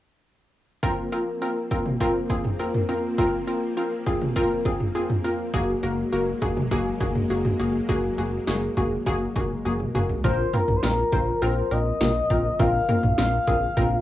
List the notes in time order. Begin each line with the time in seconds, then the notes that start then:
0.83 F3 A#3 C4 F4 A#4, kick, closed hi-hat
1.12 C4 F4 A#4, closed hi-hat
1.42 C4 F4 A#4, closed hi-hat
1.71 C4 F4 A#4, kick, closed hi-hat
1.86 mid tom
2.00 C4 F4 A#4, kick, closed hi-hat
2.30 C4 F4 G#4, kick, closed hi-hat
2.45 mid tom
2.59 C4 F4 A#4, closed hi-hat
2.74 mid tom
2.89 C4 F4 A#4, closed hi-hat
3.18 C4 F4 A#4, kick, closed hi-hat
3.47 C4 F4 A#4, closed hi-hat
3.77 C4 F4 A#4, closed hi-hat
4.06 C4 F4 G#4, kick, closed hi-hat
4.21 mid tom
4.36 C4 F4 A#4, kick, closed hi-hat
4.65 C4 F4 G#4, kick, closed hi-hat
4.80 mid tom
4.95 C4 F4 G#4, closed hi-hat
5.10 mid tom
5.24 C4 F4 A#4, closed hi-hat
5.54 F#1 F#3 G#3 A#3 F#4 G#4, kick, closed hi-hat
5.83 F#1 A#3 F#4 A#4, closed hi-hat
6.12 F#1 A#3 F#4 A#4, closed hi-hat
6.42 F1 A#3 F#4 G#4, kick, closed hi-hat
6.57 mid tom
6.71 F#1 A#3 F#4 G#4, kick, closed hi-hat
7.00 F1 A#3 F#4 G#4, kick, closed hi-hat
7.15 mid tom
7.30 F#1 A#3 F#4 G#4, closed hi-hat
7.45 mid tom
7.60 F#1 A#3 F#4 G#4, closed hi-hat
7.89 F#1 A#3 F#4 G#4, kick, closed hi-hat
8.18 F#1 A#3 F#4 G#4, closed hi-hat
8.47 F#1 A#3 F#4 G#4, snare, closed hi-hat
8.77 F1 A#3 F#4 G#4, kick, closed hi-hat
9.06 F#1 A#3 F#4 G#4, kick, closed hi-hat
9.36 F1 A#3 F#4 G#4, kick, closed hi-hat
9.65 F#1 A#3 F#4 G#4, closed hi-hat, high tom
9.80 mid tom
9.95 F#1 A#3 F#4 G#4, closed hi-hat, mid tom
10.10 floor tom
10.24 A#1 F3 C4 F4 A#4 C5, kick, closed hi-hat
10.53 A#3 C4 F4 A#4, closed hi-hat, mid tom
10.68 A#1, mid tom
10.76 C5
10.83 A#1 C4 F4 A#4, snare, closed hi-hat
11.12 A#1 C4 F4 A#4 C5, kick, closed hi-hat
11.42 A#1 C4 F4 A#4 C5, closed hi-hat
11.71 A#1 C4 F4 A#4 D#5, closed hi-hat
12.01 A#1 A#3 C4 F4 A#4, snare, closed hi-hat, mid tom
12.30 A#1 C4 F4 A#4, kick, closed hi-hat
12.59 A#1 F3 C4 F4 A#4 F5, kick, closed hi-hat
12.89 A#3 C4 F4 A#4, closed hi-hat, mid tom
13.03 A#1, mid tom
13.18 A#1 C4 F4 A#4 F5, snare, closed hi-hat
13.47 A#1 C4 F4 G#4 A#4, kick, closed hi-hat
13.77 A#1 C4 F4 A#4, kick, closed hi-hat